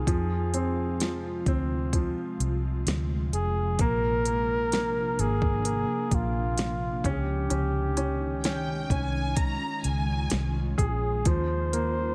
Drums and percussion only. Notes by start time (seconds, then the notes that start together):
0.07 kick, closed hi-hat
0.54 closed hi-hat
1.00 snare, closed hi-hat
1.46 kick, closed hi-hat
1.93 kick, closed hi-hat
2.40 closed hi-hat
2.87 snare, closed hi-hat
3.33 closed hi-hat
3.79 kick, closed hi-hat
4.25 closed hi-hat
4.72 snare, closed hi-hat
5.19 closed hi-hat
5.42 kick
5.65 closed hi-hat
6.11 kick, closed hi-hat
6.58 snare, closed hi-hat
7.04 kick, closed hi-hat
7.50 closed hi-hat
7.97 closed hi-hat
8.44 snare, closed hi-hat
8.90 kick, closed hi-hat
9.37 kick, closed hi-hat
9.84 closed hi-hat
10.30 snare, closed hi-hat
10.78 kick, closed hi-hat
11.25 kick, closed hi-hat
11.73 closed hi-hat